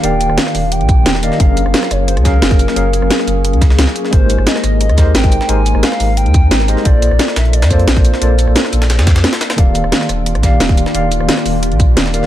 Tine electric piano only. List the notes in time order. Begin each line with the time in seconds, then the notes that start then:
Already playing: D#3 A#3 G4 D5 F5
0.03 D#3 A#3 G4 D5 F5
1.22 D#3 A#3 G4 D5 F5
1.38 F#3 C#4 G#4 A#4 F5
2.23 F#3 C#4 G#4 A#4 F5
2.75 F#3 C#4 G#4 A#4 F5
4.11 G#3 D#4 G4 A#4 C5
4.96 G#3 D#4 G4 A#4 C5
5.48 G#3 D#4 G4 A#4 C5
6.68 G#3 D#4 G4 A#4 C5
6.84 A#3 F4 A4 C5 D5
7.69 A#3 F4 A4 C5 D5
8.21 A#3 F4 A4 C5 D5
9.56 D#3 A#3 G4 D5 F5
10.42 D#3 A#3 G4 D5 F5
10.94 D#3 A#3 G4 D5 F5
12.13 D#3 A#3 G4 D5 F5